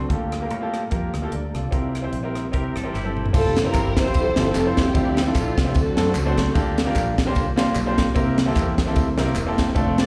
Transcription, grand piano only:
0.09 0.69 D3 medium
0.09 0.31 A#3 medium
0.09 0.31 F4 medium
0.09 0.31 G4 medium
0.09 0.32 A4 medium
0.41 0.53 A#3 medium
0.41 0.53 F4 medium
0.41 0.53 G4 medium
0.41 0.54 A#4 medium
0.61 0.81 A#3 medium
0.61 0.81 F4 medium
0.61 0.81 G4 medium
0.61 0.82 A4 medium
0.90 1.12 A#3 medium
0.90 1.12 F4 medium
0.90 1.13 G4 medium
0.90 1.13 A#4 medium
1.22 1.34 A#3 medium
1.22 1.32 F4 medium
1.22 1.32 G4 medium
1.22 1.32 A4 medium
1.32 1.54 A#4 soft
1.32 1.53 D5 medium
1.54 1.93 F4 soft
1.54 1.93 A4 medium
1.71 2.31 C3 medium
1.71 1.93 C4 medium
1.71 1.93 E4 medium
1.71 1.93 G4 medium
1.71 1.94 A#4 medium
2.02 2.15 C4 medium
2.02 2.15 E4 medium
2.02 2.15 G4 medium
2.02 2.16 C5 medium
2.23 2.42 C4 medium
2.23 2.43 E4 medium
2.23 2.43 G4 medium
2.23 2.43 A#4 medium
2.52 2.74 C4 medium
2.52 2.74 E4 medium
2.52 2.74 G4 medium
2.52 2.75 A#4 medium
2.84 2.96 C4 medium
2.84 2.96 E4 medium
2.84 2.96 G4 medium
2.84 2.97 A#4 medium
3.04 3.23 C4 medium
3.04 3.24 E4 medium
3.04 3.24 G4 medium
3.04 3.24 A4 medium
3.33 3.55 C4 medium
3.33 3.55 E4 medium
3.33 3.55 F4 medium
3.33 3.55 G4 medium
3.33 3.55 A4 medium
3.65 3.91 C4 medium
3.65 3.91 E4 medium
3.65 3.91 F4 medium
3.65 3.91 G4 medium
3.65 3.92 C5 medium
4.04 4.24 C4 medium
4.04 4.24 E4 medium
4.04 4.24 F4 medium
4.04 4.24 G4 medium
4.04 4.25 C5 medium
4.36 4.53 C4 medium
4.36 4.53 E4 medium
4.36 4.53 F4 medium
4.36 4.54 G4 medium
4.36 4.54 A4 medium
4.65 4.84 C4 medium
4.65 4.84 E4 medium
4.65 4.85 F4 medium
4.65 4.85 G4 medium
4.65 4.85 C5 medium
4.94 5.53 D3 medium
4.94 5.15 C4 medium
4.94 5.16 D4 medium
4.94 5.16 E4 medium
4.94 5.16 F4 medium
4.94 5.16 G4 medium
5.26 5.51 C4 medium
5.26 5.52 D4 medium
5.26 5.52 E4 medium
5.26 5.52 F4 medium
5.26 5.52 A4 medium
5.65 5.74 C4 medium
5.65 5.74 D4 medium
5.65 5.75 E4 medium
5.65 5.75 F4 medium
5.65 5.75 G4 medium
5.75 6.34 D3 medium
5.96 6.13 A3 medium
5.96 6.14 C4 medium
5.96 6.14 D4 medium
5.96 6.14 F#4 medium
5.96 6.14 A4 medium
6.25 6.45 A3 medium
6.25 6.45 C4 medium
6.25 6.45 D4 medium
6.25 6.45 F#4 medium
6.25 6.45 C5 loud
6.54 7.14 D3 medium
6.54 6.76 A#3 loud
6.54 6.76 D4 medium
6.54 6.76 F4 medium
6.54 6.76 G4 medium
6.54 6.77 A4 loud
6.85 7.11 A#3 medium
6.85 7.11 D4 medium
6.85 7.12 F4 medium
6.85 7.12 G4 medium
6.85 7.12 A#4 loud
7.25 7.44 A#3 medium
7.25 7.45 D4 medium
7.25 7.45 F4 medium
7.25 7.45 G4 medium
7.25 7.45 C5 loud
7.56 7.73 A#3 medium
7.56 7.74 D4 medium
7.56 7.74 F4 medium
7.56 7.74 G4 medium
7.56 7.74 C5 medium
7.85 8.05 A#3 medium
7.85 8.05 D4 medium
7.85 8.05 F4 medium
7.85 8.06 G4 medium
7.85 8.06 C5 loud
8.14 8.74 C3 medium
8.14 8.36 A#3 medium
8.14 8.36 C4 medium
8.14 8.37 E4 medium
8.14 8.37 G4 medium
8.14 8.37 A#4 loud
8.45 8.72 A#3 medium
8.45 8.72 C4 medium
8.45 8.72 E4 medium
8.45 8.72 G4 medium
8.45 8.73 A4 medium
8.85 9.05 A#3 medium
8.85 9.05 C4 medium
8.85 9.05 E4 medium
8.85 9.05 G4 medium
8.85 9.06 A4 loud
9.17 9.34 A#3 medium
9.17 9.34 C4 medium
9.17 9.35 E4 medium
9.17 9.35 G4 medium
9.17 9.35 A#4 loud
9.46 9.66 A#3 medium
9.46 9.66 C4 medium
9.46 9.66 E4 medium
9.46 9.66 G4 medium
9.46 9.66 A4 loud
9.75 9.96 A3 medium
9.75 9.96 C4 medium
9.75 9.97 D4 medium
9.75 9.97 F4 medium
9.75 9.97 A4 loud

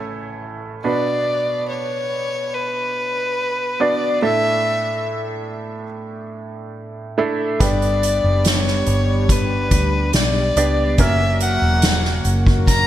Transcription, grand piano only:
0.00 0.81 A1 soft
0.00 0.81 A2 soft
0.00 0.76 A3 medium
0.00 0.76 C#4 medium
0.00 0.76 E4 medium
0.00 0.77 A4 medium
0.84 2.07 B2 soft
0.84 2.45 B3 soft
0.84 2.45 D4 soft
0.84 2.45 F#4 soft
0.84 2.45 B4 medium
3.80 4.20 B3 medium
3.80 4.21 D4 medium
3.80 4.21 F#4 medium
3.80 4.21 D5 medium
4.22 5.45 A2 soft
4.22 5.83 A3 medium
4.22 5.83 D4 medium
4.22 5.83 E4 medium
4.22 5.84 A4 medium
7.18 7.58 A3 medium
7.18 7.58 D4 medium
7.18 7.59 E4 medium
7.18 7.59 A4 medium
7.60 8.83 G3 soft
7.60 9.21 B3 medium
7.60 9.21 D4 medium
7.60 9.21 G4 medium
7.60 9.21 B4 medium
10.57 10.97 B3 medium
10.57 10.97 D4 medium
10.57 10.97 G4 medium
10.57 10.97 D5 medium
10.99 12.59 A#3 medium
10.99 12.60 C#4 medium
10.99 12.60 F#4 medium
10.99 12.60 A#4 medium

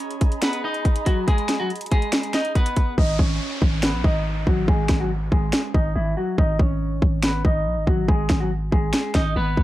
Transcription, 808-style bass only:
2.98 3.18 G#1 loud
3.19 3.40 G#1 loud
3.62 3.95 G#1 loud
3.94 4.04 A#1 loud
4.04 4.45 G#1 loud
4.47 4.67 G#1 loud
4.68 4.89 G#1 loud
4.89 5.30 G#1 loud
5.32 5.52 G#1 loud
5.74 5.95 G#1 loud
5.96 6.16 G#1 loud
6.38 6.59 G#1 loud
6.59 7.00 G#1 loud
7.02 7.43 G#1 loud
7.45 7.67 G#1 loud
7.66 7.78 A#1 loud
7.77 7.87 G#1 loud
7.87 8.08 G#1 loud
8.08 8.29 G#1 loud
8.30 8.71 G#1 loud
8.72 8.93 G#1 loud
9.15 9.35 G#1 loud
9.36 9.56 G#1 loud
9.57 9.63 G#1 loud

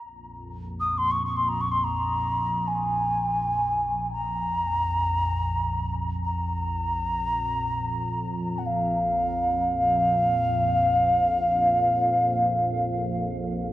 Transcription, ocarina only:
0.80 0.99 D#6 medium
0.98 1.12 C6 medium
1.11 1.23 C#6 medium
1.25 1.38 C#6 medium
1.36 1.43 C6 medium
1.43 1.50 C6 medium
1.48 1.62 A#5 medium
1.61 1.73 C#6 medium
1.71 1.85 C6 medium
1.84 2.69 A#5 medium
2.68 4.13 G#5 medium
4.14 5.96 A#5 medium
6.25 8.60 A#5 medium
8.59 8.68 F#5 soft
8.66 12.64 F5 medium

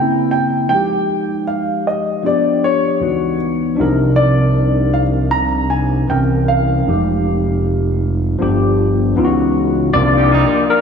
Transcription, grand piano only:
0.00 0.30 G5 medium
0.31 0.68 G5 medium
0.69 1.42 G5 medium
1.47 1.87 F5 medium
1.87 2.26 D#5 medium
2.26 2.65 D5 medium
2.64 3.36 C#5 medium
4.16 4.89 D5 medium
4.94 5.02 F5 medium
5.31 5.71 A#5 medium
5.70 6.10 G#5 medium
6.10 6.18 G5 medium
6.48 9.13 F5 medium

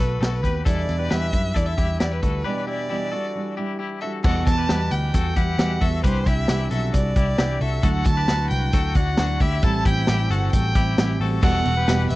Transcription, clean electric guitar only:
0.00 0.20 F#4 soft
0.00 0.20 A4 medium
0.21 0.43 F#4 medium
0.21 0.43 A4 medium
0.43 0.66 G4 medium
0.43 0.65 B4 medium
0.65 0.98 E4 medium
0.65 0.97 A4 medium
0.99 1.10 G4 medium
0.99 1.09 B4 medium
1.10 1.53 G4 medium
1.10 1.53 B4 medium
1.54 1.77 E4 medium
1.54 1.78 A4 medium
1.78 2.00 E4 medium
1.78 1.99 G4 medium
2.00 2.22 E4 medium
2.00 2.23 G4 medium
2.22 2.45 F#4 medium
2.22 2.44 A4 medium
2.44 2.66 G4 medium
2.44 2.67 B4 medium
2.67 2.89 E4 soft
2.67 2.88 G4 medium
2.89 3.11 E4 medium
2.89 3.12 G4 medium
3.12 3.55 F#4 medium
3.12 3.54 A4 medium
3.57 3.78 E4 soft
3.57 3.78 G4 medium
3.79 4.01 E4 soft
3.79 4.02 G4 medium
4.02 4.24 F#4 medium
4.02 4.23 A4 medium
4.24 4.57 F#4 medium
4.24 4.56 A4 loud
4.58 4.69 G4 medium
4.58 4.68 B4 medium
4.69 5.12 G4 medium
4.69 5.12 B4 medium
5.14 5.36 F#4 medium
5.14 5.37 A4 medium
5.36 5.58 E4 medium
5.36 5.57 G4 medium
5.58 5.80 E4 medium
5.58 5.81 G4 medium
5.81 6.04 F#4 medium
5.81 6.03 A4 medium
6.04 6.25 G4 medium
6.04 6.26 B4 medium
6.26 6.49 E4 soft
6.26 6.48 G4 medium
6.49 6.70 E4 medium
6.49 6.71 G4 medium
6.71 7.14 F#4 medium
6.71 7.13 A4 medium
7.16 7.38 E4 medium
7.16 7.37 G4 medium
7.38 7.61 E4 medium
7.38 7.61 G4 medium
7.61 7.83 F#4 medium
7.61 7.82 A4 medium
7.83 8.16 F#4 medium
7.83 8.15 A4 medium
8.17 8.29 G4 medium
8.17 8.27 B4 medium
8.28 8.71 F#4 medium
8.28 8.70 B4 medium
8.73 8.95 F#4 medium
8.73 8.96 A4 medium
8.96 9.19 D4 medium
8.96 9.18 F#4 medium
9.19 9.42 D4 medium
9.19 9.41 F#4 medium
9.42 9.63 E4 medium
9.42 9.64 G4 medium
9.64 9.85 E4 medium
9.64 9.86 A4 loud
9.86 10.07 E4 medium
9.86 10.07 G4 medium
10.08 10.30 E4 medium
10.08 10.31 G4 medium
10.31 10.73 F#4 medium
10.31 10.73 A4 medium
10.76 10.98 E4 medium
10.76 10.97 G4 medium
10.98 11.20 E4 medium
10.98 11.21 G4 medium
11.21 11.43 F#4 medium
11.21 11.42 A4 medium
11.43 11.75 F#4 medium
11.43 11.75 A4 loud
11.77 11.88 G4 medium
11.77 11.87 B4 medium
11.88 12.15 G4 medium
11.88 12.15 B4 medium

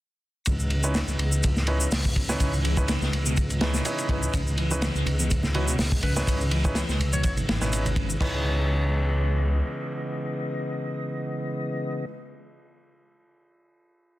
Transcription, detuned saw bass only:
0.47 1.04 C#2 loud
1.08 1.17 C#2 loud
1.19 1.88 C#2 medium
1.91 2.36 C#2 medium
2.40 2.97 C#2 loud
3.01 3.10 C#2 loud
3.13 3.81 C#2 medium
4.09 4.28 C#2 medium
4.34 4.90 C#2 loud
4.95 5.04 C#2 loud
5.06 5.75 C#2 loud
5.79 6.23 C#2 medium
6.27 6.84 C#2 loud
6.89 6.97 C#2 loud
7.00 7.24 C#2 loud
7.24 7.43 G#1 medium
7.49 7.59 G#1 medium
7.62 8.17 G#1 loud
8.21 9.62 C#2 medium

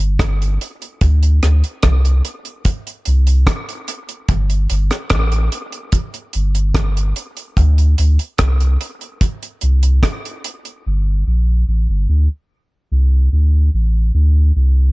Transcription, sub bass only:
0.00 0.17 G1 loud
0.20 0.58 G1 loud
1.02 1.40 D2 loud
1.43 1.63 D2 loud
1.84 2.22 C2 medium
3.07 3.45 C2 loud
4.29 4.67 G1 loud
4.71 4.90 G1 loud
5.11 5.49 A1 medium
6.35 6.73 G1 loud
6.75 7.13 G1 loud
7.57 7.95 D2 loud
7.99 8.18 D2 loud
8.40 8.77 C2 medium
9.63 10.00 C2 loud
10.87 11.24 G1 loud
11.27 11.64 A#1 medium
11.68 11.87 A1 medium
11.89 12.07 G1 medium
12.09 12.28 D2 medium
12.92 13.29 C2 medium
13.33 13.70 D2 medium
13.74 14.11 A1 medium
14.14 14.52 D2 loud
14.56 14.92 C2 medium

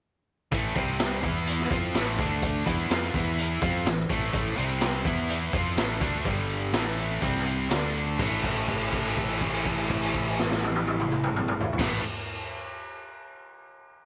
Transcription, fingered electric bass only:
0.52 0.74 A1 medium
0.76 1.20 C2 medium
1.23 1.68 E2 medium
1.71 1.93 F2 medium
1.95 2.17 A1 medium
2.19 2.63 D2 medium
2.67 2.89 E2 medium
2.90 3.13 F2 medium
3.14 3.59 E2 medium
3.62 3.84 F2 medium
3.85 4.08 A1 medium
4.09 4.32 A1 loud
4.34 4.56 A1 loud
4.58 5.02 C2 medium
5.05 5.50 E2 loud
5.53 5.76 F2 medium
5.77 6.00 A1 medium
6.01 6.24 D2 medium
6.25 6.70 G1 loud
6.73 7.19 A1 medium
7.22 7.67 C2 medium
7.71 8.16 D2 medium
8.19 11.69 A1 loud
11.79 11.99 A1 medium

